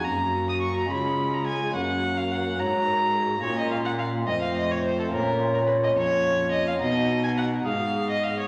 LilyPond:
<<
  \new Staff \with { instrumentName = "Violin" } { \time 6/8 \key ges \major \tempo 4. = 71 bes''8. ees'''16 des'''16 bes''16 ces'''8. bes''16 aes''8 | ges''8. f''16 ges''8 bes''4. | des''16 ees''16 f''16 ges''16 f''8 ees''16 f''16 ees''16 des''16 c''16 a'16 | bes'8. bes'16 ces''16 ees''16 des''4 ees''16 f''16 |
dis''8. aes''16 fis''8 f''8. ees''16 f''16 des''16 | }
  \new Staff \with { instrumentName = "Flute" } { \time 6/8 \key ges \major ges'4. aes'4. | bes'4. des''8 bes'8 aes'8 | bes'4 r8 c''4. | des''2. |
fis'4. aes'4. | }
  \new Staff \with { instrumentName = "Pipe organ" } { \time 6/8 \key ges \major <bes des' ges'>4. <aes des' f'>4. | <bes des' ges'>2. | <bes des' f'>4. <a c' f'>4. | <bes des' f'>2. |
<b dis'>4. <ces' aes'>4. | }
  \new Staff \with { instrumentName = "Pipe organ" } { \clef bass \time 6/8 \key ges \major ges,4. des4. | ges,4. aes,4. | bes,4. f,4. | bes,4. f,4. |
b,4. aes,4. | }
  \new Staff \with { instrumentName = "Cello" } { \clef bass \time 6/8 \key ges \major ges,4. des4. | ges,4. aes,4. | bes,4. f,4. | bes,4. f,4. |
b,4. aes,4. | }
>>